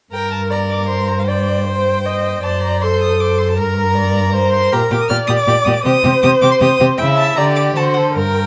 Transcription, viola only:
0.12 0.52 A#4 medium
0.50 0.88 D5 medium
0.89 1.29 C5 medium
1.28 1.66 D5 medium
1.66 2.07 C5 medium
2.06 2.43 D#5 medium
2.43 2.84 D5 medium
2.83 3.58 A4 medium
3.59 3.96 A#4 medium
3.97 4.34 D5 medium
4.34 4.74 C5 medium
4.72 5.12 A#4 medium
5.10 5.84 D5 medium
5.85 6.97 C5 medium
7.00 7.39 E5 medium
7.38 7.76 D5 medium
7.76 8.15 C5 medium
8.16 8.46 A#4 medium

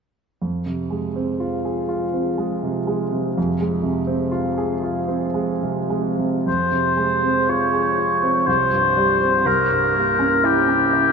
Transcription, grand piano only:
0.42 3.33 F2 soft
0.66 1.06 C3 soft
0.91 1.31 G#3 soft
1.16 1.55 C4 soft
1.40 1.80 F4 soft
1.65 2.04 G#4 soft
1.89 2.28 F4 soft
2.14 2.53 C4 soft
2.38 2.78 G#3 soft
2.63 3.03 C3 soft
2.87 3.27 G#3 soft
3.12 3.51 C3 soft
3.38 6.43 F2 soft
3.61 3.99 G#3 soft
3.83 4.22 C3 soft
4.07 4.47 C4 soft
4.32 4.72 F4 soft
4.58 4.98 G#4 soft
4.83 5.25 F4 soft
5.08 5.51 C4 soft
5.34 5.79 G#3 soft
5.63 6.08 C3 soft
5.90 6.35 G#3 soft
6.19 6.46 C3 soft
6.46 8.44 F2 soft
6.72 7.13 C3 soft
6.97 7.39 G#3 soft
7.23 7.64 C4 soft
7.49 7.89 F4 soft
7.73 8.13 G#4 soft
7.97 8.37 F4 soft
8.23 8.47 C4 soft
8.47 9.43 C2 soft
8.71 9.11 G2 soft
8.97 9.36 G3 soft
9.21 9.46 C4 soft
9.45 11.12 C2 soft
9.70 10.09 G2 soft
9.96 10.35 A#3 soft
10.19 10.59 C#4 soft
10.44 10.83 E4 soft
10.68 11.08 C#4 soft
10.93 11.12 E4 soft

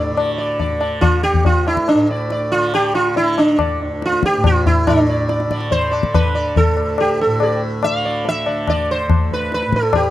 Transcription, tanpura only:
0.00 1.32 D2 medium
0.00 1.94 A2 medium
0.00 0.11 D3 medium
0.11 0.72 D3 medium
0.72 2.54 D3 medium
1.33 3.74 D2 medium
1.94 4.37 A2 medium
2.54 3.15 D3 medium
3.15 5.47 D3 medium
3.75 6.66 D2 medium
4.37 4.89 A2 medium
4.89 7.26 A2 medium
5.47 6.05 D3 medium
6.05 7.88 D3 medium
6.66 9.06 D2 medium
7.26 9.66 A2 medium
7.88 8.47 D3 medium
8.47 10.10 D3 medium
9.07 10.10 D2 medium
9.67 10.10 A2 medium

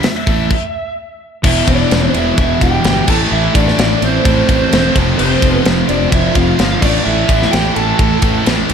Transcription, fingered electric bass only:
0.27 0.49 A1 medium
1.44 1.60 E1 medium
1.68 1.84 E1 medium
1.91 2.07 E1 medium
2.14 2.30 E1 medium
2.38 2.54 E1 medium
2.62 2.77 E1 medium
2.84 3.00 G1 medium
3.08 3.24 A1 medium
3.32 3.47 A1 loud
3.56 3.71 A1 loud
3.78 3.94 A1 loud
4.02 4.18 A1 medium
4.25 4.41 A1 medium
4.49 4.65 A1 medium
4.73 4.88 E1 medium
4.96 5.11 F1 medium
5.20 5.35 F1 loud
5.42 5.58 F1 loud
5.66 5.82 F1 medium
5.89 6.05 F1 medium
6.13 6.28 F1 medium
6.36 6.51 F1 medium
6.59 6.75 G1 medium
6.83 6.98 A1 medium
7.06 7.22 A1 medium
7.29 7.45 A1 medium
7.53 7.69 A1 medium
7.76 7.92 A1 medium
8.00 8.15 A1 loud
8.22 8.38 A1 medium
8.47 8.62 A1 medium
8.70 8.74 F1 loud

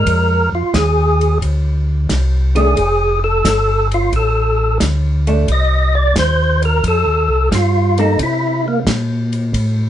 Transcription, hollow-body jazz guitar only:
0.00 0.43 G#3 medium
0.00 0.44 D4 medium
2.55 2.75 D#3 medium
2.55 2.75 A3 medium
2.55 2.75 D4 medium
5.27 5.46 A3 medium
5.27 5.47 D4 medium
7.99 8.17 A#3 medium
7.99 8.18 A4 medium

